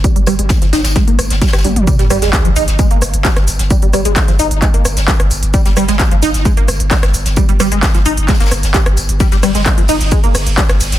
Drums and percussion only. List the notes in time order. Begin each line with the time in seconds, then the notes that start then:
0.04 kick, closed hi-hat, tambourine
0.16 closed hi-hat
0.27 cross-stick, open hi-hat, tambourine
0.39 closed hi-hat
0.49 kick, snare, closed hi-hat, tambourine
0.62 snare, closed hi-hat
0.73 snare, open hi-hat, tambourine
0.84 snare, closed hi-hat, tambourine
0.95 kick, snare, closed hi-hat, tambourine
1.08 closed hi-hat
1.19 cross-stick, open hi-hat, tambourine
1.30 snare, closed hi-hat
1.42 kick, snare, closed hi-hat, tambourine
1.48 snare, tambourine
1.53 cross-stick, snare, closed hi-hat, tambourine
1.58 snare, tambourine
1.64 open hi-hat, high tom, tambourine
1.76 closed hi-hat, mid tom
1.87 kick, closed hi-hat, tambourine, shaker
1.99 snare, closed hi-hat, shaker
2.10 cross-stick, open hi-hat, tambourine, shaker
2.22 snare, closed hi-hat, shaker
2.33 kick, snare, clap, closed hi-hat, tambourine, shaker
2.45 closed hi-hat, shaker
2.56 open hi-hat, tambourine, shaker
2.68 snare, closed hi-hat, shaker
2.79 kick, closed hi-hat, tambourine, shaker
2.91 closed hi-hat, shaker
3.01 cross-stick, open hi-hat, tambourine, shaker
3.14 closed hi-hat, shaker
3.25 kick, snare, clap, closed hi-hat, tambourine, shaker
3.36 cross-stick, snare, closed hi-hat
3.47 open hi-hat, tambourine, shaker
3.59 snare, closed hi-hat, shaker
3.71 kick, closed hi-hat, tambourine, shaker
3.82 closed hi-hat, shaker
3.93 cross-stick, open hi-hat, tambourine, shaker
4.05 closed hi-hat, shaker
4.16 kick, snare, clap, closed hi-hat, tambourine, shaker
4.28 snare, closed hi-hat, shaker
4.39 open hi-hat, tambourine, shaker
4.51 closed hi-hat, shaker
4.62 kick, clap, closed hi-hat, tambourine, shaker
4.74 closed hi-hat, shaker
4.85 cross-stick, open hi-hat, tambourine, shaker
4.97 snare, closed hi-hat, shaker
5.08 kick, snare, clap, closed hi-hat, tambourine, shaker
5.20 cross-stick, closed hi-hat, shaker
5.31 open hi-hat, tambourine, shaker
5.42 closed hi-hat, shaker
5.54 kick, closed hi-hat, tambourine, shaker
5.66 snare, closed hi-hat, shaker
5.77 cross-stick, open hi-hat, tambourine, shaker
5.88 snare, closed hi-hat, shaker
6.00 kick, snare, clap, closed hi-hat, tambourine, shaker
6.11 closed hi-hat, shaker
6.22 open hi-hat, tambourine, shaker
6.34 snare, closed hi-hat, shaker
6.45 kick, closed hi-hat, tambourine, shaker
6.57 closed hi-hat, shaker
6.68 cross-stick, open hi-hat, tambourine, shaker
6.80 closed hi-hat, shaker
6.91 kick, snare, clap, closed hi-hat, tambourine, shaker
7.03 cross-stick, snare, closed hi-hat
7.14 open hi-hat, tambourine, shaker
7.25 snare, closed hi-hat, shaker
7.36 kick, closed hi-hat, tambourine, shaker
7.49 closed hi-hat, shaker
7.60 cross-stick, open hi-hat, tambourine, shaker
7.72 closed hi-hat, shaker
7.83 kick, snare, clap, closed hi-hat, tambourine, shaker
7.95 snare, closed hi-hat, shaker
8.06 open hi-hat, shaker
8.17 closed hi-hat, shaker
8.28 kick, snare, clap, closed hi-hat, tambourine, shaker
8.34 snare, tambourine
8.40 snare, closed hi-hat, tambourine, shaker
8.46 snare, tambourine
8.51 cross-stick, open hi-hat, tambourine, shaker
8.63 snare, closed hi-hat, shaker
8.74 kick, snare, clap, closed hi-hat, tambourine, shaker
8.86 cross-stick, closed hi-hat, shaker
8.97 open hi-hat, tambourine, shaker
9.09 closed hi-hat, shaker
9.20 kick, closed hi-hat, ride, tambourine, shaker
9.32 snare, closed hi-hat, shaker
9.43 cross-stick, open hi-hat, ride, tambourine, shaker
9.55 snare, closed hi-hat, shaker
9.66 kick, snare, clap, closed hi-hat, ride, tambourine, shaker
9.78 closed hi-hat, shaker
9.88 open hi-hat, ride, tambourine, shaker
10.01 snare, closed hi-hat, shaker
10.11 kick, closed hi-hat, ride, tambourine, shaker
10.24 closed hi-hat, shaker
10.35 cross-stick, open hi-hat, ride, tambourine, shaker
10.47 closed hi-hat, shaker
10.57 kick, snare, clap, closed hi-hat, ride, tambourine, shaker
10.69 cross-stick, snare, closed hi-hat
10.80 open hi-hat, ride, tambourine, shaker
10.92 snare, closed hi-hat, shaker